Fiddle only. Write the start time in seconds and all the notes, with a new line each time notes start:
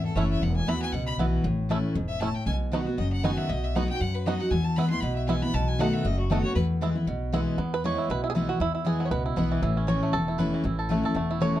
0.05 A4
0.16 C#5
0.30 E5
0.43 F#5
0.56 G#5
0.68 B5
0.82 G#5
0.92 F#5
1.06 B5
2.08 E5
2.20 A5
2.34 G5
2.46 G#5
2.98 D#5
3.13 F#5
3.24 G#5
3.37 E5
3.50 D#5
3.64 E5
3.76 F#5
3.89 G5
4.01 F#5
4.15 B4
4.26 D#5
4.40 F#5
4.51 G#5
4.64 A5
4.76 B5
4.90 C6
5.00 B5
5.16 E5
5.27 G#5
5.42 B5
5.54 A5
5.68 G#5
5.80 F#5
5.94 E5
6.05 D#5
6.19 F#4
6.30 A4
6.43 C#5
6.55 B4